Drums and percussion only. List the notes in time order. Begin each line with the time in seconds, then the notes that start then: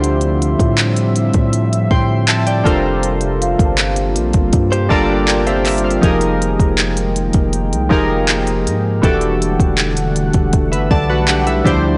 0.04 closed hi-hat
0.21 closed hi-hat
0.42 closed hi-hat
0.59 kick, closed hi-hat
0.78 clap, closed hi-hat
0.97 closed hi-hat
1.16 closed hi-hat
1.34 kick, closed hi-hat
1.53 closed hi-hat
1.73 closed hi-hat
1.91 kick
2.28 clap, closed hi-hat
2.47 closed hi-hat
2.66 kick, closed hi-hat
3.03 closed hi-hat
3.21 closed hi-hat
3.42 closed hi-hat
3.59 kick, closed hi-hat
3.78 clap, closed hi-hat
3.96 closed hi-hat
4.16 closed hi-hat
4.33 kick, closed hi-hat
4.53 kick, closed hi-hat
4.73 closed hi-hat
4.91 kick
5.28 clap, closed hi-hat
5.47 closed hi-hat
5.65 clap, closed hi-hat, open hi-hat
5.78 closed hi-hat
5.91 closed hi-hat
6.03 kick, closed hi-hat
6.21 closed hi-hat
6.42 closed hi-hat
6.60 kick, closed hi-hat
6.78 clap, closed hi-hat
6.97 closed hi-hat
7.16 closed hi-hat
7.33 kick, closed hi-hat
7.53 closed hi-hat
7.73 closed hi-hat
7.91 kick
8.29 clap, closed hi-hat
8.47 closed hi-hat
8.67 closed hi-hat
9.03 kick, closed hi-hat
9.21 closed hi-hat
9.42 closed hi-hat
9.60 kick, closed hi-hat
9.78 clap, closed hi-hat
9.97 closed hi-hat
10.16 closed hi-hat
10.33 kick, closed hi-hat
10.53 kick, closed hi-hat
10.73 closed hi-hat
10.91 kick
11.28 clap, closed hi-hat
11.47 closed hi-hat
11.66 kick, closed hi-hat